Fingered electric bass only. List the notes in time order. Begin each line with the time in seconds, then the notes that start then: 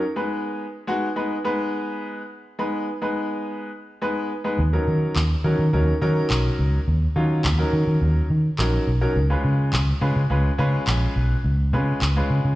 4.59 D#2
4.88 D#3
5.16 D#2
5.44 D#3
5.59 D#3
5.73 D#2
6.02 D#3
6.30 B1
6.59 C#2
6.88 D#2
7.16 D#3
7.45 D#2
7.73 D#3
7.87 D#3
8.02 D#2
8.30 D#3
8.59 A#1
8.87 B1
9.16 C#2
9.45 C#3
9.73 C#2
10.02 C#3
10.16 C#3
10.30 C#2
10.59 C#3
10.87 A#1
11.16 B1
11.44 C#2
11.73 C#3
12.02 C#2
12.30 C#3
12.45 C#3